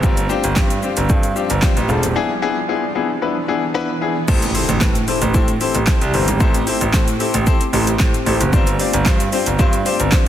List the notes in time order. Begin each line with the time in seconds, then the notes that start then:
Already playing: C4
0.03 G1 F3 G3 C4 D4 F4 G4, kick, shaker
0.17 closed hi-hat, shaker
0.29 C4 D4 F4 G4, shaker
0.44 G1, closed hi-hat, shaker
0.56 G2 C4 D4 F4 G4, kick, snare, clap, shaker
0.70 closed hi-hat, shaker
0.82 C4 D4 F4 G4, shaker
0.97 G1, closed hi-hat, shaker
1.09 G2 C4 D4 F4 A4, kick, shaker
1.23 closed hi-hat, shaker
1.36 C4 D4 F4 G4, shaker
1.50 G1, closed hi-hat, shaker
1.62 C4 D4 F4 G4, kick, snare, clap, shaker
1.77 A1, closed hi-hat, shaker
1.89 E1 C4 D4 F4 A4, shaker
2.03 D#1, closed hi-hat, shaker
2.16 E3 B3 D4 E4 G#4
2.42 B3 D4 E4 G#4
2.69 B3 D4 E4 G#4
2.95 B3 D4 E4 G#4
3.22 B3 D4 E4 B4
3.48 B3 D4 E4 G#4
3.74 B3 D4 E4 B4
4.01 B3 D4 E4 G#4
4.28 A1 A3 C4 E4 G4 A4 C5, kick, crash, impact, shaker
4.42 closed hi-hat, shaker
4.54 C4 E4 G4 A4 C5, open hi-hat, shaker
4.69 A1, closed hi-hat, shaker
4.81 C4 E4 G4 A4 B4, kick, snare, clap, shaker
4.95 closed hi-hat, shaker
5.08 C4 E4 G4 A4 C5, open hi-hat, shaker
5.22 A1, closed hi-hat, shaker
5.34 A2 C4 E4 G4 A4 C5, kick, shaker
5.48 closed hi-hat, shaker
5.61 C4 E4 G4 A4 C5, open hi-hat, shaker
5.75 A1, closed hi-hat, shaker
5.87 C4 E4 G4 A4 C5, kick, snare, clap, shaker
6.01 C2, closed hi-hat, shaker
6.14 G1 C4 E4 G4 A4 C5, open hi-hat, shaker
6.28 G#1, closed hi-hat, shaker
6.40 C4 E4 G4 A4 C5, kick, shaker
6.54 closed hi-hat, shaker
6.67 C4 E4 G4 A4 C5, open hi-hat, shaker
6.81 A1, closed hi-hat, shaker
6.93 A2 C4 E4 G4 A4 C5, kick, snare, clap, shaker
7.08 closed hi-hat, shaker
7.20 C4 E4 G4 A4 C5, open hi-hat, shaker
7.34 A1, closed hi-hat, shaker
7.47 C4 E4 G4 A4 C5, kick, shaker
7.61 closed hi-hat, shaker
7.73 A1 C4 E4 G4 A4 C5, open hi-hat, shaker
7.87 closed hi-hat, shaker
8.00 C4 E4 G4 A4 C5, kick, snare, clap, shaker
8.14 closed hi-hat, shaker
8.26 A1 C4 E4 G4 A4 C5, open hi-hat, shaker
8.40 F#1, closed hi-hat, shaker
8.53 G1 G3 C4 D4 F4 G4 C5, kick, shaker
8.67 closed hi-hat, shaker
8.79 C4 D4 F4 G4 D5, open hi-hat, shaker
8.93 G1, closed hi-hat, shaker
9.06 G2 C4 D4 F4 G4 C5, kick, snare, clap, shaker
9.20 closed hi-hat, shaker
9.32 C4 D4 F4 G4 C5, open hi-hat, shaker
9.46 G1, closed hi-hat, shaker
9.59 G2 C4 D4 F4 G4 C5, kick, shaker
9.73 closed hi-hat, shaker
9.85 C4 D4 F4 G4 C5, open hi-hat, shaker
10.00 G1, closed hi-hat, shaker
10.12 C4 D4 F4 G4 C5, kick, snare, clap, shaker